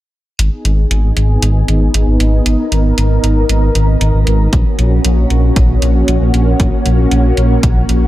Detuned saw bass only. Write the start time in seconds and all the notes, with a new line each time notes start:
0.39 G#1
0.65 G#1
0.91 G#1
1.17 G#1
1.42 G#1
1.68 G#1
1.94 G#1
2.07 G#1
2.20 G#1
2.46 G#1
2.72 G#1
2.98 G#1
3.24 G#1
3.49 G#1
3.75 G#1
4.01 G#1
4.14 G#1
4.27 G#1
4.53 A#1
4.79 A#1
5.05 A#1
5.30 A#1
5.56 A#1
5.82 A#1
6.08 A#1
6.21 A#1
6.34 A#1
6.60 A#1
6.86 A#1
7.12 A#1
7.37 A#1
7.63 A#1
7.89 A#1